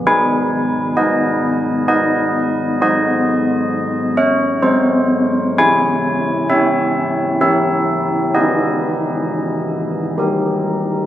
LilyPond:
\new Staff \with { instrumentName = "Church bells" } { \time 3/4 \key gis \minor \tempo 4 = 65 << { gis''4 dis''4 dis''4 | dis''4. cis''8 bis'4 | gis''4 e''4 e''4 | dis''2 r4 | } \\ { <gis dis' b'>4 <gis dis' b'>4 <gis dis' b'>4 | <gis fis' bis'>2 <gis fis'>4 | <cis' e' cis''>4 <cis' e' cis''>4 <cis' e' ais'>4 | <dis' gis' b'>2 <dis' g' ais'>4 | } >> }